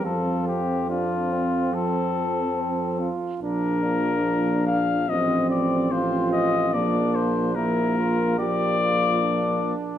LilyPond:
<<
  \new Staff \with { instrumentName = "Trumpet" } { \time 4/4 \key f \major \tempo 4 = 72 a'8 g'8 f'4 a'4. r8 | bes'4. f''8 ees''8 d''8 c''8 ees''8 | d''8 c''8 bes'4 d''4. r8 | }
  \new Staff \with { instrumentName = "Flugelhorn" } { \time 4/4 \key f \major f'4 d'8 c'4. c'8 f'8 | d'8 bes4 r8 c'4 f'4 | d'4 e'8 f'8 g'8 f'8 d'4 | }
  \new Staff \with { instrumentName = "French horn" } { \time 4/4 \key f \major c'4 c'4 c'4. r8 | d'2 c'4 c'4 | bes4 bes4 bes4. r8 | }
  \new Staff \with { instrumentName = "Euphonium" } { \clef bass \time 4/4 \key f \major f4 f4 f4. r8 | f2 f4 f4 | f4 f4 f4. r8 | }
  \new Staff \with { instrumentName = "Bass trombone" } { \clef bass \time 4/4 \key f \major f,2.~ f,8 r8 | bes,,2 a,,2 | bes,,2.~ bes,,8 r8 | }
>>